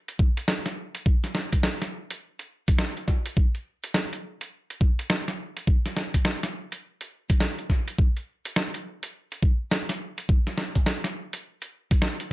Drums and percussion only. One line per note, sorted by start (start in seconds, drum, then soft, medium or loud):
0.08 closed hi-hat medium
0.19 kick loud
0.37 closed hi-hat medium
0.48 snare loud
0.66 snare medium
0.66 closed hi-hat soft
0.95 closed hi-hat medium
1.06 kick loud
1.24 snare soft
1.24 closed hi-hat soft
1.35 snare medium
1.53 kick medium
1.53 closed hi-hat medium
1.63 snare loud
1.82 snare medium
1.82 closed hi-hat medium
2.11 closed hi-hat medium
2.39 closed hi-hat medium
2.68 kick loud
2.68 closed hi-hat medium
2.78 snare loud
2.97 closed hi-hat soft
3.08 kick medium
3.08 snare soft
3.26 closed hi-hat medium
3.37 kick loud
3.55 closed hi-hat soft
3.84 closed hi-hat medium
3.94 snare loud
4.13 closed hi-hat medium
4.41 closed hi-hat medium
4.70 closed hi-hat medium
4.81 kick loud
4.99 closed hi-hat medium
5.10 snare loud
5.28 snare medium
5.28 closed hi-hat soft
5.57 closed hi-hat medium
5.67 kick loud
5.86 snare soft
5.86 closed hi-hat soft
5.97 snare medium
6.14 kick medium
6.14 closed hi-hat medium
6.25 snare loud
6.43 snare medium
6.43 closed hi-hat medium
6.72 closed hi-hat medium
7.01 closed hi-hat medium
7.30 kick loud
7.30 closed hi-hat medium
7.40 snare loud
7.58 closed hi-hat soft
7.70 kick medium
7.70 snare soft
7.88 closed hi-hat medium
7.99 kick loud
8.17 closed hi-hat soft
8.45 closed hi-hat medium
8.56 snare loud
8.74 closed hi-hat medium
9.03 closed hi-hat medium
9.32 closed hi-hat medium
9.43 kick loud
9.71 snare loud
9.89 snare medium
9.89 closed hi-hat soft
10.18 closed hi-hat medium
10.29 kick loud
10.47 snare soft
10.47 closed hi-hat soft
10.58 snare medium
10.75 kick medium
10.75 closed hi-hat medium
10.86 snare loud
11.04 snare medium
11.04 closed hi-hat medium
11.33 closed hi-hat medium
11.62 closed hi-hat medium
11.91 kick loud
11.91 closed hi-hat medium
12.02 snare loud
12.20 closed hi-hat soft